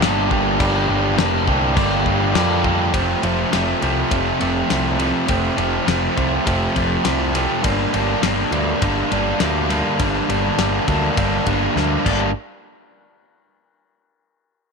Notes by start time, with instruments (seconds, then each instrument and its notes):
0.01 picked electric bass G1, overdriven electric guitar G2 D3 G3 A#3 D4 G4, snare, crash
0.29 picked electric bass G1, overdriven electric guitar G2 D3 G3 A#3 D4 G4, kick
0.59 picked electric bass G1, overdriven electric guitar G2 D3 G3 A#3 D4 G4, kick, crash
0.89 picked electric bass G1
1.16 picked electric bass F1, overdriven electric guitar G2 D3 G3 A#3 D4 G4, snare, crash
1.46 picked electric bass C2, overdriven electric guitar G2 D3 G3 A#3 D4 G4, kick
1.75 picked electric bass G1, overdriven electric guitar G2 D3 G3 A#3 D4 G4, kick, crash
2.06 picked electric bass G1, kick
2.34 picked electric bass F2, overdriven electric guitar G2 D3 G3 A#3 D4 G4, snare, crash
2.63 overdriven electric guitar G2 D3 G3 A#3 D4 G4, kick
2.93 picked electric bass F1, overdriven electric guitar F2 C3 F3 A3 C4, kick, ride
3.22 picked electric bass F1, overdriven electric guitar F2 C3 F3 A3 C4, ride
3.51 picked electric bass F1, overdriven electric guitar F2 C3 F3 A3 C4, snare, ride
3.81 picked electric bass C2, overdriven electric guitar F2 C3 F3 A3 C4, ride
4.11 picked electric bass F1, overdriven electric guitar F2 C3 F3 A3 C4, kick, ride
4.40 picked electric bass F1, overdriven electric guitar F2 C3 F3 A3 C4, ride
4.69 picked electric bass C2, overdriven electric guitar F2 C3 F3 A3 C4, snare, ride
4.98 overdriven electric guitar F2 C3 F3 A3 C4, ride
5.27 picked electric bass F1, overdriven electric guitar F2 C3 F3 A3 C4, kick, ride
5.56 picked electric bass F1, overdriven electric guitar F2 C3 F3 A3 C4, ride
5.85 picked electric bass F1, overdriven electric guitar F2 C3 F3 A3 C4, snare, ride
6.15 picked electric bass C2, overdriven electric guitar F2 C3 F3 A3 C4, kick, ride
6.45 picked electric bass F1, overdriven electric guitar F2 C3 F3 A3 C4, kick, ride
6.74 picked electric bass F1, overdriven electric guitar F2 C3 F3 A3 C4, kick, ride
7.04 picked electric bass C2, overdriven electric guitar F2 C3 F3 A3 C4, snare, ride
7.34 overdriven electric guitar F2 C3 F3 A3 C4, snare, ride
7.62 picked electric bass G1, overdriven electric guitar G2 D3 G3 A#3 D4, kick, ride
7.92 picked electric bass G1, overdriven electric guitar G2 D3 G3 A#3 D4, ride
8.22 picked electric bass G1, overdriven electric guitar G2 D3 G3 A#3 D4, snare, ride
8.52 picked electric bass D2, overdriven electric guitar G2 D3 G3 A#3 D4, ride
8.81 picked electric bass G1, overdriven electric guitar G2 D3 G3 A#3 D4, kick, ride
9.10 picked electric bass G1, overdriven electric guitar G2 D3 G3 A#3 D4, ride
9.39 picked electric bass D2, overdriven electric guitar G2 D3 G3 A#3 D4, snare, ride
9.69 overdriven electric guitar G2 D3 G3 A#3 D4, snare, ride
9.99 picked electric bass G1, overdriven electric guitar G2 D3 G3 A#3 D4, kick, ride
10.28 picked electric bass G1, overdriven electric guitar G2 D3 G3 A#3 D4, ride
10.57 picked electric bass G1, overdriven electric guitar G2 D3 G3 A#3 D4, snare, ride
10.87 picked electric bass D2, overdriven electric guitar G2 D3 G3 A#3 D4, kick, ride
11.16 picked electric bass G1, overdriven electric guitar G2 D3 G3 A#3 D4, kick, ride
11.45 picked electric bass G1, overdriven electric guitar G2 D3 G3 A#3 D4, kick, ride
11.75 picked electric bass D2, overdriven electric guitar G2 D3 G3 A#3 D4, snare
12.05 picked electric bass G1, overdriven electric guitar G2 D3 G3 A#3 D4, kick, crash